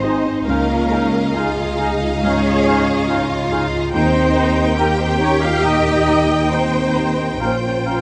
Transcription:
Already playing: double bass section G#1, felt piano D#3 D#4 G#4 D#5 G#5, french horn section C4, violin section D#4 C5 D#5, viola section C5
0.03 cello section D#4, felt piano G#4, cor anglais D#5, flute section G#5
0.07 clarinet D#4
0.25 felt piano D#4
0.47 felt piano C#2, double bass section C#2, french horn section A#3, cello section C#4, violin section D#4 D#5 F5, clarinet D#4, viola section A#4, cor anglais F5, flute section G#5
0.69 felt piano F4
0.91 clarinet D#4, felt piano G#4, cor anglais F5, flute section G#5
1.13 felt piano F5
1.34 french horn section G#3, clarinet D#4, cello section F4, viola section G#4, cor anglais F5, flute section G#5, felt piano G#5
1.57 felt piano F5
1.78 cello section D#4, clarinet D#4, felt piano G#4, cor anglais F5, flute section G#5
2.01 felt piano F4
2.23 felt piano G#2, french horn section C#4, clarinet D#4, cello section G#4, viola section C#5, cor anglais F5, flute section G#5
2.46 felt piano F4
2.66 clarinet D#4, felt piano G#4, cor anglais F5, flute section G#5
2.89 felt piano F5
3.09 clarinet D#4, cello section F4, cor anglais F5, flute section G#5, felt piano G#5
3.30 felt piano F5
3.51 clarinet D#4, felt piano G#4, cor anglais F5, flute section G#5
3.73 felt piano F4
3.93 double bass section D#2, felt piano D#2, timpani D#3, french horn section C4, cello section D#4, violin section D#4 A#4 G5, clarinet D#4, viola section C5, cor anglais G5, flute section A#5
4.15 felt piano D#4
4.35 clarinet D#4, felt piano G4, cor anglais G5, flute section A#5
4.57 felt piano D#5
4.78 french horn section A#3, clarinet D#4, cello section G4, viola section A#4, felt piano G5, cor anglais G5, flute section A#5
5.00 french horn section C4, viola section C5, felt piano D#5
5.20 french horn section C#4, clarinet D#4, felt piano G4, viola section C#5, cor anglais G5, flute section A#5
5.42 felt piano D#4, french horn section F4, viola section F5
5.63 felt piano A#2, french horn section D#4, clarinet D#4, viola section D#5, cor anglais G5, flute section A#5
5.88 felt piano D#4
6.06 clarinet D#4, felt piano G4, cor anglais G5, flute section A#5
6.31 felt piano D#5
6.49 french horn section C4, clarinet D#4, cello section D#4, viola section C5, cor anglais G5, flute section A#5
6.54 felt piano G5
6.76 felt piano D#5
6.95 clarinet D#4, felt piano G4, cor anglais G5, flute section A#5
7.20 felt piano D#4
7.40 double bass section A#1, felt piano A#2, clarinet C#4, violin section C#4 A#4, cello section F4, french horn section C5, viola section C5, cor anglais F5, flute section A#5
7.64 felt piano C#4
7.86 clarinet C#4, felt piano F4, cor anglais F5, flute section A#5

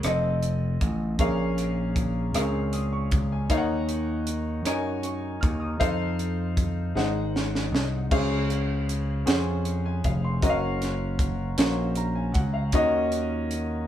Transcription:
0.03 slap bass F1, grand piano C4 F4 A4 D#5, cross-stick, closed hi-hat
0.43 closed hi-hat
0.81 slap bass A1, kick, closed hi-hat
1.19 slap bass A#1, grand piano A#2 C#4 G#4 A#4 F5, kick, closed hi-hat
1.58 cross-stick, closed hi-hat
1.96 kick, closed hi-hat
2.34 slap bass C#2, grand piano C4 G#4 A#4 F5, cross-stick, closed hi-hat
2.41 grand piano C#4
2.73 grand piano D#6, closed hi-hat
2.93 grand piano C#6
3.11 slap bass C#2, kick, closed hi-hat
3.32 grand piano G#5
3.50 slap bass D#2, grand piano D#3 D#4 A#4 C#5 F5, kick, closed hi-hat
3.57 grand piano F#5
3.89 closed hi-hat
4.27 closed hi-hat
4.65 slap bass F#2, grand piano D#4 A#4 C#5 G#5, cross-stick, closed hi-hat
5.03 grand piano C#6, closed hi-hat
5.41 slap bass D#2, grand piano F6, kick, closed hi-hat
5.60 grand piano D#6
5.79 slap bass F2, grand piano D#4 A4 C5 F5, kick, closed hi-hat
6.19 closed hi-hat
6.57 kick, closed hi-hat
6.95 slap bass G#1, grand piano G#2 D#4 G#4 C5 F#5, snare
7.36 snare
7.55 snare
7.72 slap bass C2, snare
8.11 slap bass C#2, grand piano C#3 C#4 G#4 C5 F5, kick, crash
8.50 closed hi-hat
8.89 closed hi-hat
9.26 slap bass F2, grand piano C#4 G#4 C5 F#5, snare, closed hi-hat
9.33 grand piano G#5
9.65 closed hi-hat
9.86 grand piano G#5
10.04 slap bass F1, grand piano F5, kick, closed hi-hat
10.24 grand piano C6
10.42 slap bass F#1, grand piano C#4 F#4 A#4 D#5, kick, closed hi-hat
10.49 grand piano F5
10.82 snare, closed hi-hat
11.19 kick, closed hi-hat
11.57 slap bass A#1, grand piano C#4 F#4 A#4 C5, snare, closed hi-hat
11.95 grand piano A#5, closed hi-hat
12.15 grand piano G#5
12.34 slap bass C#2, grand piano F#5, kick, closed hi-hat
12.54 grand piano F5
12.72 slap bass D#2, grand piano D#3 C#4 F#4 A#4 D#5, kick, closed hi-hat
13.12 closed hi-hat
13.51 closed hi-hat

